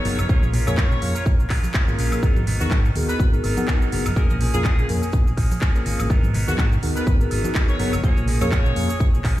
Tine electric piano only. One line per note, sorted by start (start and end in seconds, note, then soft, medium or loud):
0.05 0.16 B3 medium
0.05 0.17 D#4 medium
0.05 0.17 F#4 medium
0.05 0.17 G#4 medium
0.05 0.17 A#4 loud
0.29 0.64 A#3 medium
0.29 0.64 C#4 medium
0.29 0.64 F4 medium
0.29 0.64 G#4 medium
0.29 0.64 A#4 medium
0.67 0.99 A#3 loud
0.67 0.99 C#4 medium
0.67 0.99 F4 medium
0.67 1.00 G#4 medium
0.67 1.00 A#4 loud
1.01 1.13 A#3 medium
1.01 1.13 C#4 medium
1.01 1.13 F4 medium
1.01 1.13 G#4 medium
1.01 1.14 A#4 medium
1.88 2.20 A#3 medium
1.88 2.20 C#4 medium
1.88 2.20 F4 medium
1.88 2.20 G#4 medium
1.88 2.21 A#4 loud
2.23 2.40 B3 medium
2.23 2.40 D#4 medium
2.23 2.40 F#4 medium
2.23 2.40 G#4 medium
2.23 2.40 A#4 medium
2.60 2.76 B3 medium
2.60 2.76 D#4 medium
2.60 2.76 F#4 medium
2.60 2.76 G#4 medium
2.60 2.76 A#4 loud
2.95 3.30 B3 loud
2.95 3.30 D#4 medium
2.95 3.30 F#4 medium
2.95 3.30 G#4 medium
2.95 3.30 A#4 loud
3.33 3.54 B3 medium
3.33 3.54 D#4 medium
3.33 3.54 F#4 medium
3.33 3.54 G#4 medium
3.33 3.54 A#4 medium
3.57 3.90 B3 medium
3.57 3.90 D#4 medium
3.57 3.90 F#4 medium
3.57 3.90 G#4 medium
3.57 3.90 A#4 medium
3.92 4.04 B3 medium
3.92 4.04 D#4 medium
3.92 4.04 F#4 medium
3.92 4.04 G#4 medium
3.92 4.04 A#4 loud
4.16 4.51 A#3 medium
4.16 4.51 C#4 medium
4.16 4.51 F4 medium
4.16 4.51 G#4 medium
4.16 4.51 A#4 medium
4.54 4.86 A#3 loud
4.54 4.86 C#4 medium
4.54 4.87 F4 medium
4.54 4.87 G#4 medium
4.54 4.87 A#4 loud
4.89 5.00 A#3 medium
4.89 5.00 C#4 medium
4.89 5.01 F4 medium
4.89 5.01 G#4 medium
4.89 5.01 A#4 medium
5.75 6.07 A#3 medium
5.75 6.07 C#4 medium
5.75 6.07 F4 medium
5.75 6.08 G#4 medium
5.75 6.08 A#4 loud
6.10 6.27 B3 medium
6.10 6.27 D#4 medium
6.10 6.27 G#4 medium
6.10 6.28 A#4 medium
6.48 6.63 B3 medium
6.48 6.63 D#4 medium
6.48 6.63 F#4 medium
6.48 6.63 G#4 medium
6.48 6.63 A#4 medium
6.82 7.17 B3 loud
6.82 7.17 D#4 loud
6.82 7.17 F#4 medium
6.82 7.17 G#4 medium
6.82 7.17 A#4 loud
7.20 7.41 B3 medium
7.20 7.41 D#4 medium
7.20 7.41 F#4 medium
7.20 7.42 G#4 medium
7.20 7.42 A#4 loud
7.44 7.77 B3 medium
7.44 7.77 D#4 medium
7.44 7.77 F#4 medium
7.44 7.77 G#4 medium
7.44 7.77 A#4 medium
7.79 7.91 B3 medium
7.79 7.91 D#4 medium
7.79 7.91 F#4 medium
7.79 7.91 G#4 medium
7.79 7.91 A#4 loud
8.03 8.38 A#3 medium
8.03 8.38 F4 medium
8.03 8.38 G#4 medium
8.03 8.38 A#4 medium
8.41 8.73 A#3 loud
8.41 8.73 C#4 medium
8.41 8.74 F4 medium
8.41 8.74 G#4 loud
8.41 8.74 A#4 loud
8.76 8.87 A#3 medium
8.76 8.88 C#4 medium
8.76 8.88 F4 medium
8.76 8.88 G#4 medium
8.76 8.88 A#4 medium